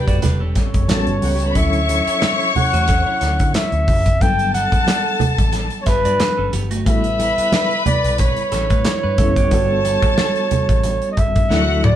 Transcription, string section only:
Already playing: G4 G5
0.89 A4 A5
1.23 F#4 F#5
1.32 G4 G5
1.41 A4 A5
1.48 B4 B5
1.55 C#5 C#6
4.21 A4 A5
6.86 B4 B5
9.51 A4 A5
11.50 F#4 F#5

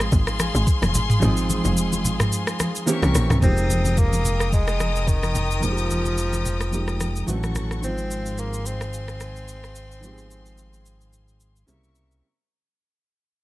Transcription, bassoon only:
3.43 C4
3.98 A#3
4.53 G#3
5.08 D#3
5.63 F3
7.84 C4
8.39 A#3
8.66 C4

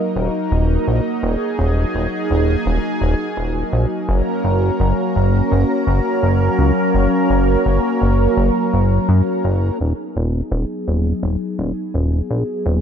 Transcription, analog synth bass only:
0.16 D#1
0.52 D#1
0.87 A#1
1.23 D#1
1.59 D#1
1.94 D#1
2.30 D#1
2.66 D#1
3.01 D#1
3.37 D#1
3.73 A#1
4.09 F#1
4.44 F#1
4.80 F#1
5.16 F#1
5.51 F#1
5.87 F#1
6.23 F#1
6.59 C#2
6.94 F#1
7.30 F#1
7.66 F#1
8.02 F#1
8.37 F#1
8.73 F#1
9.09 F#2
9.44 F#1
9.80 D#1
10.16 D#1
10.52 D#1
10.87 D#1
11.23 D#1
11.59 D#1
11.94 D#1
12.30 A#1
12.66 D#1

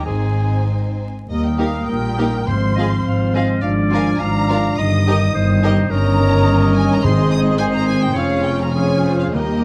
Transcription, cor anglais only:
0.06 G#4
1.29 A#4
2.47 C5
3.61 D5
4.79 D#5
5.91 C#5
7.04 C5
7.60 C5
8.16 C#5
8.74 C#5
9.05 C5
9.36 A#4

